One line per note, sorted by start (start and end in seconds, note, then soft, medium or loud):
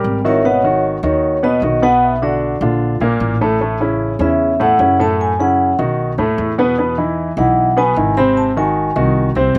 0.00 0.18 G3 medium
0.00 0.18 G4 medium
0.00 0.18 A#4 medium
0.04 0.97 G#1 medium
0.25 0.41 D#3 medium
0.25 0.41 D#4 medium
0.25 0.45 E4 medium
0.25 0.41 F#4 medium
0.25 0.45 A#4 medium
0.25 0.45 C#5 medium
0.25 0.44 E5 medium
0.44 0.60 B2 medium
0.44 0.61 B3 medium
0.44 0.82 F#4 medium
0.44 0.61 B4 medium
0.44 0.82 C#5 medium
0.44 0.82 D#5 medium
0.44 0.81 F#5 medium
0.64 0.96 D#3 medium
0.64 0.96 D#4 medium
0.64 0.97 F#4 medium
1.03 1.58 D#2 medium
1.03 1.36 D#3 medium
1.03 1.36 D#4 medium
1.03 1.36 F#4 medium
1.03 1.41 C#5 medium
1.43 1.59 B2 medium
1.43 1.59 B3 medium
1.43 1.59 B4 medium
1.43 1.80 D#5 medium
1.62 2.55 B1 medium
1.62 1.79 D#3 medium
1.62 1.79 D#4 medium
1.62 1.79 F#4 medium
1.82 2.15 B2 medium
1.82 2.15 B3 medium
1.82 2.15 B4 medium
1.82 2.02 F#5 loud
2.03 2.22 E5 medium
2.22 2.54 D3 medium
2.22 2.55 D4 medium
2.22 2.55 F#4 medium
2.22 2.59 D5 medium
2.61 2.98 A#1 medium
2.61 2.94 D3 medium
2.61 2.94 D4 medium
2.61 2.94 F4 medium
3.00 3.19 A#1 medium
3.00 3.34 A#2 medium
3.00 3.34 A#3 medium
3.00 3.34 A#4 medium
3.20 4.14 A1 medium
3.41 3.57 A2 medium
3.41 3.57 A3 medium
3.41 3.57 A4 medium
3.61 3.77 A2 medium
3.61 3.77 A3 medium
3.61 3.77 A4 medium
3.80 4.13 C#3 medium
3.80 4.13 C#4 medium
3.80 4.13 E4 medium
4.19 4.75 E2 medium
4.19 4.52 C#3 medium
4.19 4.53 C#4 medium
4.19 4.53 E4 medium
4.19 4.58 E5 medium
4.60 4.76 A2 medium
4.60 4.76 A3 medium
4.60 4.76 A4 medium
4.60 4.97 F#5 loud
4.79 5.72 F#2 medium
4.79 4.96 C#3 medium
4.79 4.96 C#4 medium
4.79 4.96 E4 medium
4.99 5.32 A2 medium
4.99 5.32 A3 medium
4.99 5.32 A4 medium
4.99 5.20 A5 loud
5.21 5.39 G#5 medium
5.39 5.72 C#3 medium
5.39 5.72 C#4 medium
5.39 5.72 E4 medium
5.39 5.77 F#5 medium
5.79 6.15 B1 medium
5.79 6.11 D#3 medium
5.79 6.11 D#4 medium
5.79 6.11 F#4 medium
6.18 6.36 D#2 medium
6.18 6.51 A2 medium
6.18 6.51 A3 medium
6.18 6.51 A4 medium
6.38 7.31 E2 medium
6.58 6.74 B2 medium
6.58 6.75 B3 medium
6.58 6.75 B4 medium
6.78 6.94 B2 medium
6.78 6.94 B3 medium
6.78 6.95 B4 medium
6.98 7.30 E3 medium
6.98 7.30 D#4 medium
6.98 7.31 E4 medium
7.37 7.93 B1 medium
7.37 7.70 E3 medium
7.37 7.70 D#4 medium
7.37 7.70 E4 medium
7.37 7.75 F#5 medium
7.77 7.93 B2 medium
7.77 7.93 B3 medium
7.77 7.93 B4 medium
7.77 8.14 G#5 medium
7.96 8.90 G#1 medium
7.96 8.13 D#3 medium
7.96 8.13 D#4 medium
7.96 8.13 E4 medium
8.17 8.49 C3 medium
8.17 8.50 C4 medium
8.17 8.50 C5 medium
8.17 8.36 B5 loud
8.37 8.56 A5 medium
8.57 8.89 D#3 medium
8.57 8.89 D#4 medium
8.57 8.89 F#4 medium
8.57 8.94 G#5 medium
8.96 9.33 C2 medium
8.96 9.28 D#3 medium
8.96 9.29 D#4 medium
8.96 9.29 F#4 medium
9.35 9.54 C2 medium
9.35 9.59 C3 medium
9.35 9.59 C4 medium
9.35 9.59 C5 medium
9.55 9.59 C#2 medium